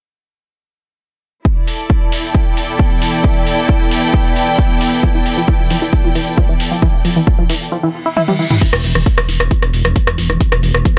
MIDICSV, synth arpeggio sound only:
0, 0, Header, 1, 2, 480
1, 0, Start_track
1, 0, Tempo, 447761
1, 1555, Time_signature, 4, 2, 24, 8
1, 11779, End_track
2, 0, Start_track
2, 0, Title_t, "Synth arpeggio sound"
2, 0, Program_c, 0, 84
2, 5395, Note_on_c, 0, 53, 85
2, 5450, Note_off_c, 0, 53, 0
2, 5518, Note_on_c, 0, 52, 74
2, 5570, Note_off_c, 0, 52, 0
2, 5759, Note_on_c, 0, 53, 74
2, 5811, Note_off_c, 0, 53, 0
2, 5876, Note_on_c, 0, 52, 84
2, 5930, Note_off_c, 0, 52, 0
2, 6116, Note_on_c, 0, 53, 75
2, 6171, Note_off_c, 0, 53, 0
2, 6239, Note_on_c, 0, 52, 75
2, 6291, Note_off_c, 0, 52, 0
2, 6479, Note_on_c, 0, 53, 76
2, 6531, Note_off_c, 0, 53, 0
2, 6595, Note_on_c, 0, 52, 75
2, 6650, Note_off_c, 0, 52, 0
2, 6836, Note_on_c, 0, 53, 85
2, 6891, Note_off_c, 0, 53, 0
2, 6959, Note_on_c, 0, 52, 75
2, 7011, Note_off_c, 0, 52, 0
2, 7198, Note_on_c, 0, 53, 77
2, 7250, Note_off_c, 0, 53, 0
2, 7315, Note_on_c, 0, 52, 84
2, 7370, Note_off_c, 0, 52, 0
2, 7555, Note_on_c, 0, 53, 76
2, 7610, Note_off_c, 0, 53, 0
2, 7678, Note_on_c, 0, 52, 76
2, 7731, Note_off_c, 0, 52, 0
2, 7918, Note_on_c, 0, 53, 81
2, 7970, Note_off_c, 0, 53, 0
2, 8035, Note_on_c, 0, 52, 78
2, 8090, Note_off_c, 0, 52, 0
2, 8274, Note_on_c, 0, 53, 82
2, 8330, Note_off_c, 0, 53, 0
2, 8398, Note_on_c, 0, 52, 74
2, 8450, Note_off_c, 0, 52, 0
2, 8638, Note_on_c, 0, 64, 74
2, 8669, Note_off_c, 0, 64, 0
2, 8755, Note_on_c, 0, 64, 101
2, 8810, Note_off_c, 0, 64, 0
2, 8877, Note_on_c, 0, 55, 79
2, 8930, Note_off_c, 0, 55, 0
2, 8994, Note_on_c, 0, 52, 73
2, 9050, Note_off_c, 0, 52, 0
2, 9118, Note_on_c, 0, 52, 82
2, 9170, Note_off_c, 0, 52, 0
2, 9234, Note_on_c, 0, 52, 82
2, 9290, Note_off_c, 0, 52, 0
2, 9475, Note_on_c, 0, 53, 76
2, 9530, Note_off_c, 0, 53, 0
2, 9598, Note_on_c, 0, 52, 77
2, 9650, Note_off_c, 0, 52, 0
2, 9838, Note_on_c, 0, 53, 76
2, 9890, Note_off_c, 0, 53, 0
2, 9954, Note_on_c, 0, 52, 77
2, 10010, Note_off_c, 0, 52, 0
2, 10195, Note_on_c, 0, 53, 80
2, 10250, Note_off_c, 0, 53, 0
2, 10318, Note_on_c, 0, 52, 75
2, 10371, Note_off_c, 0, 52, 0
2, 10558, Note_on_c, 0, 53, 75
2, 10610, Note_off_c, 0, 53, 0
2, 10674, Note_on_c, 0, 52, 83
2, 10730, Note_off_c, 0, 52, 0
2, 10914, Note_on_c, 0, 53, 78
2, 10970, Note_off_c, 0, 53, 0
2, 11038, Note_on_c, 0, 52, 81
2, 11090, Note_off_c, 0, 52, 0
2, 11278, Note_on_c, 0, 53, 73
2, 11330, Note_off_c, 0, 53, 0
2, 11394, Note_on_c, 0, 52, 77
2, 11450, Note_off_c, 0, 52, 0
2, 11635, Note_on_c, 0, 53, 86
2, 11690, Note_off_c, 0, 53, 0
2, 11779, End_track
0, 0, End_of_file